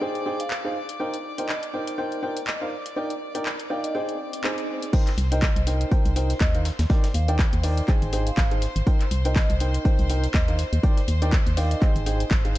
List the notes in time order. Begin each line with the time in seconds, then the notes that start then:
Already playing: D5 D6
0.01 D#4 G#4 C5 G5
0.15 closed hi-hat
0.26 D#4 G#4 C5 G5
0.40 F5, closed hi-hat
0.51 clap
0.65 D#4 G#4 C5 F5
0.89 closed hi-hat
1.00 D#4 A#4 C5 G5
1.14 closed hi-hat
1.38 D#4 A#4 C5 D#5 G5, closed hi-hat
1.49 D#5, clap
1.63 closed hi-hat
1.73 D#4 A#4 C5 G5
1.87 closed hi-hat
1.98 D#4 A#4 C5 G5
2.12 closed hi-hat
2.23 D#4 A#4 C5 G5
2.37 closed hi-hat
2.47 D#5, clap
2.61 D#4 A#4 C5 F5
2.86 closed hi-hat
2.96 D#4 A#4 D5 G5
3.10 closed hi-hat
3.35 D#4 A#4 D5 G5, closed hi-hat
3.46 clap
3.60 closed hi-hat
3.70 D#4 A#4 D5 F5 G5
3.84 D#5, closed hi-hat
3.95 D#4 G#4 C5 G5, swell
4.09 closed hi-hat
4.33 closed hi-hat
4.44 D#4 G#4 C5 G#5, clap
4.58 closed hi-hat
4.82 closed hi-hat
4.93 D#4 A#4 C5 G5 C6, kick, closed hi-hat, crash
5.07 clap, closed hi-hat
5.18 C2, closed hi-hat, open hi-hat
5.32 D#4 A#4 C5 D#5 G5, closed hi-hat
5.42 kick, snare, clap, closed hi-hat
5.56 C2, closed hi-hat
5.67 D#4 A#4 C5 G5, closed hi-hat, open hi-hat
5.81 closed hi-hat
5.91 D#4 A#4 C5 G5, kick, closed hi-hat
6.05 C2, closed hi-hat
6.16 D#4 A#4 C5 G5, closed hi-hat, open hi-hat
6.30 snare, closed hi-hat
6.41 D#2 D#5, kick, snare, clap, closed hi-hat
6.55 D#4 A#4 C5 F5, closed hi-hat
6.65 snare, closed hi-hat, open hi-hat
6.79 D#2, snare, closed hi-hat
6.90 D#4 A#4 D5 G5, kick, snare, closed hi-hat
7.04 snare, closed hi-hat
7.14 D#2 F5, closed hi-hat, open hi-hat
7.28 D#4 A#4 D5 G5, closed hi-hat
7.39 kick, snare, clap, closed hi-hat
7.53 D#2, closed hi-hat
7.63 D#4 A#4 D5 G5, open hi-hat
7.77 closed hi-hat
7.88 D#4 G#4 C5 G5, kick, clap, closed hi-hat
8.02 G#1, closed hi-hat
8.13 D#4 G#4 C5 G5, closed hi-hat, open hi-hat
8.27 F5, closed hi-hat
8.37 G#1, kick, snare, clap, closed hi-hat
8.51 D#4 G#4 C5 F5, closed hi-hat
8.62 snare, closed hi-hat, open hi-hat
8.76 G#1, closed hi-hat
8.87 D#4 A#4 C5 G5, kick, closed hi-hat
9.01 clap, closed hi-hat
9.11 C2, closed hi-hat, open hi-hat
9.25 D#4 A#4 C5 D#5 G5, closed hi-hat
9.36 kick, snare, clap, closed hi-hat
9.50 C2, closed hi-hat
9.60 D#4 A#4 C5 G5, closed hi-hat, open hi-hat
9.74 closed hi-hat
9.85 D#4 A#4 C5 G5, kick, closed hi-hat
9.99 C2, closed hi-hat
10.10 D#4 A#4 C5 G5, closed hi-hat, open hi-hat
10.24 snare, closed hi-hat
10.34 D#2 D#5, kick, snare, clap, closed hi-hat
10.48 D#4 A#4 C5 F5, closed hi-hat
10.59 snare, closed hi-hat, open hi-hat
10.73 D#2, closed hi-hat
10.83 D#4 A#4 D5 G5, kick, closed hi-hat
10.97 snare, closed hi-hat
11.08 D#2, closed hi-hat, open hi-hat
11.22 D#4 A#4 D5 G5, closed hi-hat
11.33 kick, snare, clap, closed hi-hat
11.47 D#2, closed hi-hat
11.57 D#4 A#4 D5 F5 G5, open hi-hat
11.71 D#5, closed hi-hat
11.82 D#4 G#4 C5 G5, kick, clap, closed hi-hat
11.96 G#1, closed hi-hat
12.06 D#4 G#4 C5 G5, closed hi-hat, open hi-hat
12.20 closed hi-hat
12.31 G#1, kick, snare, clap, closed hi-hat
12.45 D#4 G#4 C5 F5, closed hi-hat